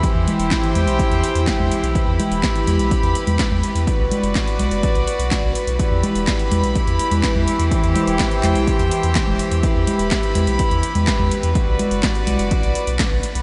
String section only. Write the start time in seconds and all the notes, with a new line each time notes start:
Already playing: E3 E4
0.04 G4 C5 G5
1.95 G4 B4 B5
3.87 F#4 D5
5.79 E3 E4 G4 B5
7.72 C5 G5
9.63 E4 B4 B5
11.55 F#4 D5